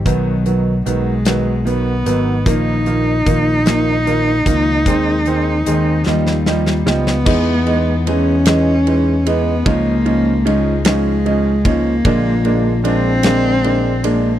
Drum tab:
CC |------------|------------|------------|x-----------|
RD |------------|------------|------------|--x-x-x-x-x-|
HH |x-x-x-x-x-x-|x-x-x-x-x-x-|x-x-x-------|------------|
SD |------o-----|------o-----|------oooooo|------o-----|
BD |o-----------|o---o-----o-|o-----------|o-----------|

CC |------------|------------|
RD |x-x-x-x-x-x-|x-x-x-x-x-x-|
HH |------------|------------|
SD |------o-----|------o-----|
BD |o---------o-|o-----------|